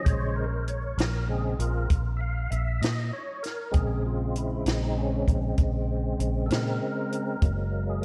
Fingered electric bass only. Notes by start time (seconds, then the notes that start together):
0.06 A#1
0.98 A#1
1.59 A#1
1.90 A#1
2.51 A#1
2.82 A#2
3.74 A#1
4.66 A#1
5.28 A#1
5.58 A#1
6.19 A#1
6.50 A#2
7.42 F#1